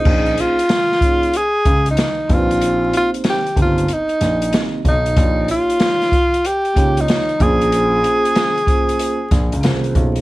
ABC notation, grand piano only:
X:1
M:4/4
L:1/16
Q:"Swing 16ths" 1/4=94
K:Bbdor
V:1 name="Grand piano" clef=bass
B,,,2 z8 D,,2 z2 B,,,2- | B,,,2 z4 G,,,2 z2 B,,,2 z2 _C,,2 | B,,,2 z8 D,,2 z2 B,,,2- | B,,,2 z8 B,,, D,, C,,2 _C,,2 |]